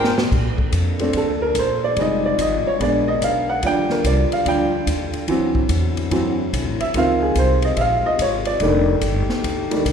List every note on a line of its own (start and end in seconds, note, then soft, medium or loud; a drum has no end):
0.00 0.30 G#2 medium
0.00 0.12 G#3 medium
0.00 0.14 G#3 medium
0.00 0.12 C4 medium
0.00 0.12 D4 medium
0.00 0.15 D4 medium
0.00 0.12 F4 medium
0.00 0.14 F4 medium
0.00 0.12 G4 medium
0.00 0.14 A#4 loud
0.00 0.29 C5 medium
0.00 0.29 D5 medium
0.00 0.28 G5 loud
0.04 snare medium
0.18 snare medium
0.31 0.56 A#2 medium
0.31 1.95 F3 medium
0.31 1.95 A#3 medium
0.31 1.95 D4 medium
0.31 1.95 A4 medium
0.31 kick medium
0.31 crash medium
0.58 muted upright bass stroke soft
0.58 kick medium
0.72 1.13 F2 medium
0.72 kick soft
0.72 hi-hat pedal medium
0.72 ride medium
0.99 1.24 A3 soft
0.99 1.24 C4 soft
0.99 1.25 D4 soft
0.99 ride soft
1.13 1.54 D2 medium
1.13 1.42 A4 medium
1.13 kick soft
1.13 ride medium
1.42 1.56 A#4 medium
1.55 1.95 A#1 medium
1.55 kick soft
1.55 hi-hat pedal medium
1.55 ride medium
1.59 1.83 C5 medium
1.84 1.98 D5 medium
1.97 2.37 F1 medium
1.97 2.80 F3 medium
1.97 2.76 G3 soft
1.97 2.77 G#3 soft
1.97 2.80 C4 medium
1.97 2.79 D#4 medium
1.97 2.77 D#4 medium
1.97 2.80 F4 medium
1.97 kick soft
1.97 ride medium
2.01 2.25 D#5 medium
2.26 2.39 D5 medium
2.38 2.63 G#1 medium
2.38 2.66 D#5 medium
2.38 kick soft
2.38 hi-hat pedal medium
2.38 ride medium
2.64 2.81 C#5 medium
2.64 muted upright bass stroke soft
2.78 3.20 A#1 medium
2.78 3.61 G#3 medium
2.78 3.45 G#3 soft
2.78 3.62 B3 medium
2.78 3.45 B3 soft
2.78 5.25 D4 medium
2.78 3.45 D4 medium
2.78 3.61 A#4 medium
2.78 kick soft
2.78 ride medium
2.83 3.07 D5 medium
3.08 3.22 D#5 medium
3.21 3.62 B1 medium
3.21 3.49 F5 medium
3.21 kick soft
3.21 hi-hat pedal medium
3.21 ride medium
3.49 3.63 F#5 medium
3.62 4.03 D#2 medium
3.62 5.26 D3 medium
3.62 4.44 F3 soft
3.62 5.26 G3 medium
3.62 4.45 G3 soft
3.62 4.45 D4 medium
3.62 5.26 F4 medium
3.62 kick soft
3.62 ride medium
3.67 3.91 G5 medium
3.90 4.05 A#4 medium
3.90 snare soft
4.04 4.29 C2 medium
4.04 4.31 D5 medium
4.04 kick soft
4.04 hi-hat pedal medium
4.04 ride medium
4.31 4.46 F5 medium
4.31 muted upright bass stroke soft
4.31 ride soft
4.45 4.86 D2 medium
4.45 4.70 F3 soft
4.45 4.70 G3 soft
4.45 4.70 D4 soft
4.45 5.26 G5 medium
4.45 kick soft
4.45 ride medium
4.87 5.12 D#2 medium
4.87 kick soft
4.87 hi-hat pedal medium
4.87 ride medium
5.13 muted upright bass stroke soft
5.13 ride soft
5.27 5.68 D2 medium
5.27 6.92 D3 medium
5.27 5.59 E3 soft
5.27 6.92 F#3 medium
5.27 5.60 F#3 soft
5.27 6.92 C4 medium
5.27 5.60 C4 medium
5.27 6.92 E4 medium
5.27 kick soft
5.27 ride medium
5.55 kick medium
5.69 6.10 E2 medium
5.69 kick soft
5.69 hi-hat pedal medium
5.69 ride medium
5.97 ride soft
6.11 6.51 F#2 medium
6.11 6.35 E3 soft
6.11 6.35 F#3 soft
6.11 6.36 C4 soft
6.11 kick soft
6.11 ride medium
6.53 6.65 B1 medium
6.53 kick soft
6.53 hi-hat pedal medium
6.53 ride medium
6.65 6.78 A1 medium
6.79 6.92 F#1 medium
6.79 6.94 E5 medium
6.79 ride medium
6.93 7.34 C#2 medium
6.93 8.58 C3 medium
6.93 8.56 D#3 soft
6.93 8.57 F3 soft
6.93 8.58 G#3 medium
6.93 8.59 C4 medium
6.93 8.57 C4 medium
6.93 8.58 F4 medium
6.93 kick soft
6.93 ride medium
6.98 7.22 F5 medium
7.22 7.36 G#4 medium
7.35 7.76 C2 medium
7.35 7.63 C5 medium
7.35 kick soft
7.35 hi-hat pedal medium
7.35 ride medium
7.62 7.78 D#5 medium
7.62 ride medium
7.77 8.02 A#1 medium
7.77 7.79 E5 medium
7.77 kick soft
7.77 ride medium
7.81 8.05 F5 medium
8.03 8.19 D#5 medium
8.03 muted upright bass stroke soft
8.19 8.59 G#1 medium
8.19 8.46 C#5 medium
8.19 kick soft
8.19 hi-hat pedal medium
8.19 ride medium
8.45 8.85 D5 medium
8.45 ride medium
8.60 9.00 F1 medium
8.60 8.92 D#3 soft
8.60 8.92 G3 soft
8.60 9.93 A3 medium
8.60 8.92 A3 soft
8.60 9.93 D4 medium
8.60 8.92 D4 medium
8.60 9.93 D#4 medium
8.60 9.93 G4 medium
8.60 kick soft
8.60 ride medium
9.01 9.26 G1 medium
9.01 kick soft
9.01 hi-hat pedal medium
9.01 ride medium
9.28 muted upright bass stroke soft
9.28 snare medium
9.44 9.84 D2 medium
9.44 kick soft
9.44 ride medium
9.71 9.84 D#3 soft
9.71 9.84 G3 soft
9.71 9.84 A3 soft
9.71 9.84 D4 soft
9.71 ride medium
9.85 9.93 C2 medium
9.85 kick soft
9.85 hi-hat pedal medium
9.85 ride medium